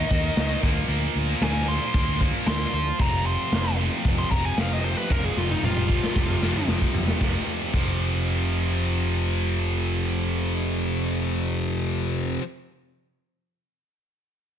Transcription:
Already playing: D#3 A#3 D#4 D#5
0.10 D#2 D#3 A#3 D#4, kick
0.35 C#2 D#3 A#3 D#4, snare, open hi-hat
0.61 D2 A#2 F3 A#3, kick
0.88 D2, open hi-hat
1.15 D2
1.41 D2 A#2 F3 A#3 G#5, snare, open hi-hat
1.68 C6
1.94 D2 A#2 F3 A#3, kick, open hi-hat
2.19 A#2 F3 A#3, kick
2.46 D2 C6, snare, open hi-hat
2.72 D2 C6
2.99 F1 F2 C3 F3 A#5, kick, open hi-hat
3.26 C6
3.52 F1, snare, open hi-hat
3.78 F2 C3 F3
4.05 F1, kick, open hi-hat
4.19 C6
4.30 F1 F2 C3 F3 A#5, kick
4.45 G#5
4.57 F1 F2 C3 F3 F5, snare, open hi-hat
4.73 D#5
4.84 C5
4.98 B4
5.09 F1 F2 C3 F3 A#4, kick, high tom
5.24 G#4, high tom
5.36 F1 F4, snare
5.50 D#4, high tom
5.62 F1 F4, mid tom
5.76 mid tom
5.88 F2 C3 F3, kick
6.03 snare
6.16 F1, kick, snare
6.29 mid tom
6.41 F2 C3 F3, snare
6.56 mid tom
6.67 F1 F2 C3 F3, snare
6.82 kick
6.93 F1, floor tom
7.08 snare
7.19 F1 F2 C3 F3, kick, snare
7.71 F1 F2 C3, kick, crash
7.76 F3

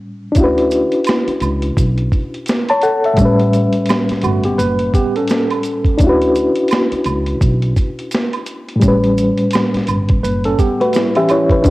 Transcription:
Already playing: A2 G3 C#4
0.32 C#4 D4, kick, closed hi-hat, maracas
0.36 D2 E4
0.40 F#4 B4
0.58 closed hi-hat
0.71 closed hi-hat, maracas
0.92 closed hi-hat
1.04 closed hi-hat, high woodblock, maracas
1.09 snare
1.27 muted upright bass stroke, closed hi-hat
1.40 C#2, closed hi-hat, high woodblock, maracas
1.62 closed hi-hat
1.77 B1, kick, closed hi-hat, maracas
1.98 closed hi-hat
2.12 kick, closed hi-hat, maracas
2.34 closed hi-hat
2.46 snare, closed hi-hat, maracas
2.69 C#5 A5, closed hi-hat, high woodblock
2.82 A4 F#5, closed hi-hat, maracas
3.04 E5, closed hi-hat
3.14 A1 A2 G3, kick, closed hi-hat
3.18 C#4, maracas
3.25 B4
3.40 closed hi-hat
3.53 closed hi-hat, maracas
3.73 closed hi-hat
3.86 closed hi-hat, high woodblock, maracas
3.90 snare
4.09 muted upright bass stroke, snare, closed hi-hat
4.22 G1 A3 F#4, closed hi-hat, high woodblock, maracas
4.44 B3 G4, closed hi-hat
4.58 F#1 B4, closed hi-hat, maracas
4.79 closed hi-hat
4.94 B3 G4, kick, closed hi-hat, maracas
5.16 C#4 A4, closed hi-hat
5.28 snare, closed hi-hat, maracas
5.51 closed hi-hat, high woodblock
5.63 closed hi-hat, maracas
5.85 kick, closed hi-hat
5.98 D2 C#4 D4, kick, closed hi-hat, maracas
6.03 E4 F#4
6.09 B4
6.22 closed hi-hat
6.35 closed hi-hat, maracas
6.56 closed hi-hat
6.68 closed hi-hat, high woodblock, maracas
6.73 snare
6.92 muted upright bass stroke, closed hi-hat
7.04 C#2, closed hi-hat, high woodblock, maracas
7.26 closed hi-hat
7.41 B1, kick, closed hi-hat, maracas
7.62 closed hi-hat
7.76 kick, closed hi-hat, maracas
7.99 closed hi-hat
8.11 snare, closed hi-hat, maracas
8.33 closed hi-hat, high woodblock
8.46 closed hi-hat, maracas
8.69 closed hi-hat
8.76 A2 G3
8.81 A1 C#4, kick, closed hi-hat, maracas
8.88 B4
9.04 closed hi-hat
9.18 closed hi-hat, maracas
9.38 closed hi-hat
9.51 closed hi-hat, high woodblock, maracas
9.55 snare
9.74 muted upright bass stroke, snare, closed hi-hat
9.87 G1, closed hi-hat, high woodblock, maracas
10.09 kick, closed hi-hat
10.23 F#1 B4, closed hi-hat, maracas
10.44 C#4 A4, closed hi-hat
10.59 B3 G4, kick, closed hi-hat, maracas
10.80 A3 F#4 B4, closed hi-hat
10.93 G3 E4, snare, closed hi-hat, maracas
11.15 E3 C#4 G4 E5, closed hi-hat, high woodblock
11.29 E4 C#5, closed hi-hat, high woodblock, maracas
11.50 B4, kick, closed hi-hat
11.62 D2 C#4 D4, kick, closed hi-hat, maracas

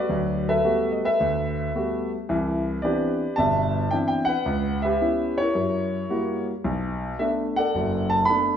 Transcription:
Already playing: F#4 B4 D5
0.09 D2 F#3
0.49 A4 B4 E5
0.65 G3 A3 B3 F#4
0.92 D#5
1.05 A4 B4 E5
1.20 D2
1.75 G3 A3 B3 F#4
2.29 C2 E3
2.82 E3 B3 C4 D4 G4 B4 D5
3.36 G1 B2 D5 E5 A5
3.91 E3 B3 C4 D4 G5
4.08 G5
4.25 B4 F#5
4.46 C#2
4.82 G4 B4 E5
5.01 B3 C#4 E4
5.38 E4 A#4 C#5
5.55 F#2
6.09 G3 A#3 E4 F#4
6.64 B1
7.19 A3 B3 D4 E5
7.56 A4 D5 F#5
7.75 F#1 F#2
8.10 A5
8.25 A3 B3 B5
8.30 D4

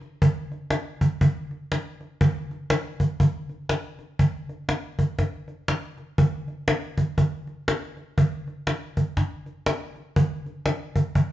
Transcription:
0.01 cajon slap
0.22 cajon bass
0.52 cajon slap
0.70 cajon slap
1.01 cajon bass
1.21 cajon bass, cajon slap
1.51 cajon slap
1.72 cajon slap
2.01 cajon slap
2.21 cajon bass
2.51 cajon slap
2.70 cajon slap
3.00 cajon bass
3.20 cajon bass, cajon slap
3.49 cajon slap
3.69 cajon slap
3.99 cajon slap
4.19 cajon bass
4.49 cajon slap
4.69 cajon slap
4.99 cajon bass
5.19 cajon bass, cajon slap
5.48 cajon slap
5.68 cajon slap
5.98 cajon slap
6.18 cajon bass
6.48 cajon slap
6.68 cajon slap
6.98 cajon bass
7.18 cajon bass, cajon slap
7.47 cajon slap
7.68 cajon slap
7.97 cajon slap
8.18 cajon bass
8.47 cajon slap
8.67 cajon slap
8.97 cajon bass
9.17 cajon bass, cajon slap
9.46 cajon slap
9.66 cajon slap
9.96 cajon slap
10.16 cajon bass
10.46 cajon slap
10.66 cajon slap
10.96 cajon bass
11.15 cajon bass, cajon slap

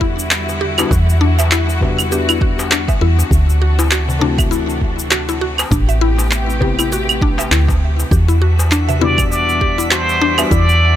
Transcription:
Already playing: E2 D3 G3 B3 D4 E4 F#4
0.01 E4, kick
0.19 cabasa
0.31 clap, cabasa
0.49 darbuka ka, cabasa
0.61 G4
0.78 G3 B3 D4 E4 F#4, darbuka tek, cabasa, claves
0.91 E2 F#4, kick, cabasa
1.09 cabasa
1.21 D4
1.39 E5, darbuka tek, cabasa
1.51 E4, clap, cabasa
1.69 darbuka ka, cabasa
1.81 G3 B3 D4 F#4, kick, darbuka dum
1.99 darbuka ka, cabasa, claves
2.10 G3 B3 D4 G4, cabasa
2.14 F#4
2.29 E4, cabasa, claves
2.41 F#4, kick
2.59 darbuka tek, cabasa
2.71 D4, clap, cabasa
2.88 E5, kick, darbuka tek, cabasa
3.01 E2 E4
3.19 darbuka ka, cabasa
3.31 D2 C3 E3 D4, kick, cabasa
3.50 cabasa
3.62 F#4
3.79 E4, darbuka tek, cabasa
3.91 F#4, clap, cabasa
4.08 darbuka dum, cabasa
4.19 A3 C4 D4 E4 F#4, darbuka dum
4.38 E5, kick, darbuka ka, cabasa, claves
4.51 E4, darbuka tek, cabasa
4.70 cabasa
4.81 kick
4.99 cabasa
5.11 F#4, clap, cabasa
5.29 E4, darbuka ka, cabasa
5.41 F#4
5.58 darbuka tek, cabasa, claves
5.71 A1 C3 A3 B3 D4 G4, kick, cabasa
5.89 E5, cabasa
6.01 E4
6.18 darbuka tek, cabasa
6.31 clap, cabasa
6.49 darbuka ka, cabasa
6.60 B3 C4 E4 G4, kick, darbuka dum
6.79 E4, darbuka ka, cabasa, claves
6.92 F#4, cabasa
7.09 cabasa, claves
7.21 D4, kick
7.38 E5, darbuka tek, cabasa
7.51 D2 E4, clap, cabasa
7.68 kick, darbuka tek, cabasa
7.99 darbuka ka, cabasa
8.11 E2 E3 G3 D4 F#4 G4 E5, kick, cabasa
8.28 E4, cabasa
8.42 F#4
8.59 darbuka tek, cabasa
8.71 D4, clap, cabasa
8.89 E5, darbuka dum, cabasa
8.99 B2 G3 D4 E4 D5, darbuka dum
9.04 F#4
9.18 kick, darbuka ka, cabasa, claves
9.31 D5, darbuka tek, cabasa
9.49 cabasa
9.61 G4, kick
9.78 E4, cabasa
9.91 F#4 C5, clap, cabasa
10.09 darbuka ka, cabasa
10.21 D4
10.38 G3 B3 D4 F#4 E5, darbuka tek, cabasa, claves
10.51 E2 E4 D5, kick, cabasa
10.69 cabasa

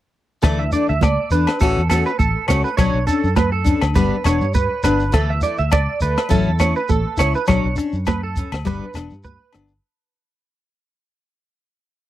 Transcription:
0.42 D2 E3 A3 D4 A4, kick, cross-stick, low agogo, shekere
0.59 E5
0.72 A3 D4 D5, closed hi-hat, muted conga, shekere
0.89 D2 E5, shekere
1.01 C#2 D5, kick, cross-stick, high conga, low agogo, shekere
1.31 E2 D4 B4, closed hi-hat, shekere
1.35 A3
1.47 cross-stick, low agogo, shekere
1.60 A1 E3 A3 C#4 F#4 A4, kick, muted conga, shekere
1.77 E2
1.89 C#4 F#4 A4, cross-stick, closed hi-hat, high conga, low agogo, shekere
1.94 A3
2.06 B4, shekere
2.19 A1 A4, kick, high conga, shekere
2.48 C#2 A3 C#4 F#4 C#5, cross-stick, closed hi-hat, low agogo, shekere
2.64 B4, shekere
2.77 B1 F#3 C#4 D4 C#5, kick, cross-stick, muted conga, low agogo, shekere
2.94 B1
3.07 C#4 D4 A4, closed hi-hat, muted conga, shekere
3.24 F#2, shekere
3.36 B4, kick, cross-stick, high conga, low agogo, shekere
3.52 A4
3.64 C#4 D4, kick, closed hi-hat, shekere
3.81 D2, cross-stick, low agogo, shekere
3.95 G1 G3 B3 D4 B4, kick, muted conga, shekere
4.24 E1 B3 D4 C#5, cross-stick, closed hi-hat, low agogo, shekere
4.41 G2, shekere
4.54 B4, kick, high conga, shekere
4.83 G1 B3 D4 B4, cross-stick, closed hi-hat, low agogo, shekere
4.99 shekere
5.12 D2 E3 A3 A4, muted steel-string acoustic guitar stroke, kick, cross-stick, muted conga, low agogo, shekere
5.30 E5
5.41 E4 D5, closed hi-hat, muted conga, shekere
5.45 A3
5.58 D2 E5, shekere
5.71 C#2 D5, kick, cross-stick, high conga, low agogo, shekere
6.01 D2 A3 B4, closed hi-hat, muted conga, shekere
6.17 cross-stick, low agogo, shekere
6.29 A1 F#3 C#4 E4 A4, kick, muted conga, shekere
6.48 E2
6.59 C#4 E4 C#5, cross-stick, closed hi-hat, high conga, low agogo, shekere
6.76 B4, shekere
6.89 A1 A4, kick, high conga, shekere
7.17 C#2 C#4 E4 C#5, cross-stick, closed hi-hat, low agogo, shekere
7.34 B4, shekere
7.47 B1 F#3 C#4 D4 C#5, kick, cross-stick, muted conga, low agogo, shekere
7.64 B1
7.76 C#4 D4, muted clean electric guitar stroke, closed hi-hat, muted conga, shekere
7.92 F#2, shekere
8.06 B4, kick, cross-stick, high conga, low agogo, shekere
8.23 A4
8.36 C#4, kick, closed hi-hat, muted conga, shekere
8.52 D2, cross-stick, low agogo, shekere
8.65 G1 G3 B3 D4 B4, kick, muted conga, shekere
8.94 E1 B3 D4, cross-stick, closed hi-hat, low agogo, shekere
9.10 G2, shekere
9.23 B4, kick, high conga, shekere
9.53 G1 B3 D4, cross-stick, closed hi-hat, low agogo
9.68 shekere

